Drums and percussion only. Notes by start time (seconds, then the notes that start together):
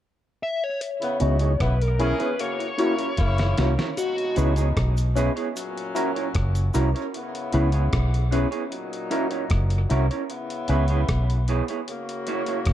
0.81 closed hi-hat
1.02 closed hi-hat
1.20 closed hi-hat
1.39 closed hi-hat
1.60 kick, cross-stick, closed hi-hat
1.82 closed hi-hat
2.00 closed hi-hat
2.20 closed hi-hat
2.39 closed hi-hat
2.60 closed hi-hat
2.79 closed hi-hat
2.99 closed hi-hat
3.17 kick, closed hi-hat
3.38 snare, closed hi-hat
3.58 snare, closed hi-hat
3.79 snare, closed hi-hat
3.97 closed hi-hat, cabasa
4.18 closed hi-hat
4.36 closed hi-hat, cabasa
4.56 closed hi-hat, cabasa
4.77 kick, cross-stick, closed hi-hat
4.97 closed hi-hat, cabasa
5.17 closed hi-hat, cabasa
5.37 closed hi-hat
5.57 closed hi-hat, cabasa
5.78 closed hi-hat
5.96 closed hi-hat, cabasa
6.16 closed hi-hat
6.35 kick, cross-stick, closed hi-hat
6.55 closed hi-hat, cabasa
6.74 closed hi-hat, cabasa
6.96 closed hi-hat
7.14 closed hi-hat
7.35 closed hi-hat
7.53 closed hi-hat
7.72 closed hi-hat
7.93 kick, cross-stick, closed hi-hat
8.14 closed hi-hat
8.32 closed hi-hat
8.52 closed hi-hat
8.72 closed hi-hat
8.93 closed hi-hat
9.11 closed hi-hat
9.31 closed hi-hat
9.50 kick, cross-stick, closed hi-hat
9.70 closed hi-hat
9.90 closed hi-hat
10.11 closed hi-hat
10.30 closed hi-hat
10.50 closed hi-hat
10.68 closed hi-hat
10.88 closed hi-hat
11.09 kick, cross-stick, closed hi-hat
11.30 closed hi-hat
11.48 closed hi-hat
11.68 closed hi-hat
11.88 closed hi-hat
12.09 closed hi-hat
12.27 closed hi-hat
12.46 closed hi-hat
12.65 kick, cross-stick, closed hi-hat